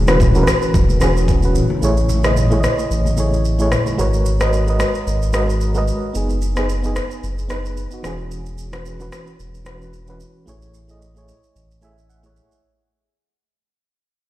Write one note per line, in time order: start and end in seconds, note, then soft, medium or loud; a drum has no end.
0.00 0.45 E1 loud
0.00 0.07 E3 medium
0.00 0.08 C#4 medium
0.00 0.09 F#4 medium
0.00 1.03 G#4 loud
0.07 0.28 E3 medium
0.07 0.29 C#4 medium
0.07 0.29 F#4 medium
0.07 0.30 B4 medium
0.07 cross-stick medium
0.07 high conga medium
0.07 shaker medium
0.20 kick medium
0.20 low conga medium
0.20 shaker medium
0.33 0.88 E3 medium
0.33 0.89 C#4 medium
0.33 0.89 F#4 medium
0.33 0.42 A#4 medium
0.33 high conga medium
0.33 shaker soft
0.43 0.93 B4 medium
0.47 cross-stick loud
0.47 shaker medium
0.62 shaker soft
0.74 1.59 E1 loud
0.74 kick loud
0.74 shaker medium
0.89 high conga medium
0.89 shaker medium
1.00 1.34 E3 medium
1.00 1.34 C#4 medium
1.00 1.35 F#4 medium
1.00 1.35 G#4 medium
1.00 cross-stick medium
1.00 high conga medium
1.00 shaker medium
1.17 shaker medium
1.28 kick loud
1.28 shaker medium
1.42 1.74 E3 medium
1.42 1.75 C#4 medium
1.42 1.75 F#4 medium
1.42 1.76 B4 medium
1.42 shaker medium
1.55 low conga medium
1.55 shaker medium
1.70 high conga medium
1.81 2.67 A1 loud
1.81 2.15 A3 medium
1.81 2.15 E4 medium
1.81 2.16 G#4 medium
1.81 2.16 C#5 medium
1.81 shaker medium
1.97 shaker medium
2.09 high conga medium
2.09 shaker medium
2.23 2.45 A3 medium
2.23 2.45 E4 medium
2.23 2.46 G#4 medium
2.23 2.46 D#5 medium
2.23 cross-stick medium
2.23 high conga medium
2.23 shaker medium
2.36 low conga medium
2.36 shaker medium
2.50 3.05 A3 medium
2.50 3.05 E4 medium
2.50 3.06 G#4 medium
2.50 2.58 C#5 medium
2.50 high conga medium
2.50 shaker soft
2.60 3.10 D#5 medium
2.60 cross-stick medium
2.60 shaker medium
2.79 shaker soft
2.90 3.76 A1 loud
2.90 shaker medium
3.05 high conga medium
3.05 shaker medium
3.17 3.50 A3 medium
3.17 3.51 E4 medium
3.17 3.51 G#4 medium
3.17 3.52 C#5 medium
3.17 high conga medium
3.17 shaker medium
3.34 shaker medium
3.45 shaker medium
3.58 3.91 A3 medium
3.58 3.91 E4 medium
3.58 3.92 G#4 medium
3.58 3.92 C#5 medium
3.58 shaker medium
3.72 cross-stick medium
3.72 low conga medium
3.72 shaker medium
3.86 high conga medium
3.86 shaker medium
3.97 4.84 G#1 loud
3.97 4.31 G#3 medium
3.97 4.31 F#4 medium
3.97 4.32 A#4 medium
3.97 4.32 B4 medium
3.97 4.33 C#5 medium
3.97 shaker medium
4.14 shaker medium
4.26 shaker medium
4.39 4.61 G#3 medium
4.39 4.61 F#4 medium
4.39 4.62 A#4 medium
4.39 4.62 B4 medium
4.39 4.63 D#5 medium
4.39 cross-stick loud
4.39 shaker medium
4.53 shaker medium
4.67 5.21 G#3 medium
4.67 5.21 F#4 medium
4.67 5.22 A#4 medium
4.67 5.22 B4 medium
4.67 5.23 D#5 loud
4.67 shaker soft
4.80 cross-stick loud
4.80 shaker medium
4.95 shaker soft
5.07 5.92 G#1 loud
5.07 shaker medium
5.22 shaker medium
5.32 5.66 G#3 medium
5.32 5.66 F#4 medium
5.32 5.67 A#4 medium
5.32 5.67 B4 medium
5.32 5.68 D#5 medium
5.32 cross-stick medium
5.32 shaker medium
5.49 shaker medium
5.61 shaker medium
5.75 6.07 G#3 medium
5.75 6.07 F#4 medium
5.75 6.08 A#4 medium
5.75 6.08 B4 medium
5.75 6.08 D#5 medium
5.75 shaker medium
5.88 shaker medium
6.13 7.00 F#1 loud
6.13 6.47 B3 medium
6.13 6.48 D#4 medium
6.13 6.49 G#4 medium
6.13 shaker medium
6.30 shaker medium
6.42 shaker medium
6.55 6.77 B3 medium
6.55 6.78 D#4 medium
6.55 6.79 G#4 medium
6.55 cross-stick medium
6.55 shaker medium
6.69 shaker medium
6.82 7.37 B3 medium
6.82 7.38 D#4 medium
6.82 7.39 G#4 medium
6.82 shaker soft
6.96 cross-stick medium
6.96 shaker medium
7.11 shaker soft
7.23 7.87 F#1 loud
7.23 shaker medium
7.39 shaker soft
7.49 7.82 B3 medium
7.49 7.83 D#4 medium
7.49 7.84 B4 medium
7.49 cross-stick medium
7.49 shaker medium
7.66 shaker medium
7.77 shaker medium
7.91 8.03 B3 medium
7.91 8.04 D#4 medium
7.91 8.04 F#4 medium
7.91 shaker medium
8.03 9.10 E1 loud
8.03 8.57 E3 medium
8.03 8.58 C#4 medium
8.03 8.59 F#4 medium
8.03 8.59 G#4 medium
8.03 cross-stick medium
8.03 shaker medium
8.31 shaker medium
8.46 shaker medium
8.58 shaker medium
8.72 8.93 E3 medium
8.72 8.94 C#4 medium
8.72 8.94 F#4 medium
8.72 8.95 B4 medium
8.72 cross-stick medium
8.72 shaker medium
8.86 shaker medium
8.99 9.53 E3 medium
8.99 9.54 C#4 medium
8.99 9.54 F#4 medium
8.99 9.55 B4 medium
8.99 shaker soft
9.12 cross-stick medium
9.12 shaker medium
9.27 shaker soft
9.39 10.24 E1 medium
9.39 shaker medium
9.55 shaker soft
9.64 9.98 E3 medium
9.64 9.99 C#4 medium
9.64 9.99 F#4 medium
9.64 10.00 B4 medium
9.64 cross-stick medium
9.64 shaker medium
9.82 shaker medium
9.93 shaker medium
10.06 10.39 E3 medium
10.06 10.40 C#4 medium
10.06 10.40 F#4 medium
10.06 10.41 B4 medium
10.06 shaker medium
10.20 shaker medium
10.46 11.32 A1 loud
10.46 10.80 A3 medium
10.46 10.80 E4 medium
10.46 10.81 G#4 medium
10.46 10.81 C#5 medium
10.46 shaker medium
10.62 shaker medium
10.74 shaker medium
10.88 11.09 A3 medium
10.88 11.10 E4 medium
10.88 11.11 G#4 medium
10.88 11.11 D#5 medium
10.88 shaker medium
11.02 shaker medium
11.15 11.69 A3 medium
11.15 11.70 E4 medium
11.15 11.71 G#4 medium
11.15 11.71 C#5 medium
11.15 shaker soft
11.28 shaker medium
11.44 shaker soft
11.55 12.40 A1 medium
11.55 shaker medium
11.71 shaker soft
11.81 12.15 A3 medium
11.81 12.15 E4 medium
11.81 12.16 G#4 medium
11.81 12.16 E5 medium
11.81 12.08 G#5 medium
11.81 shaker medium
11.98 shaker medium
12.09 12.60 F#5 medium
12.09 shaker medium
12.23 12.55 A3 medium
12.23 12.56 E4 medium
12.23 12.56 G#4 medium
12.23 12.57 C#5 medium
12.23 shaker medium
12.36 shaker medium
12.51 shaker medium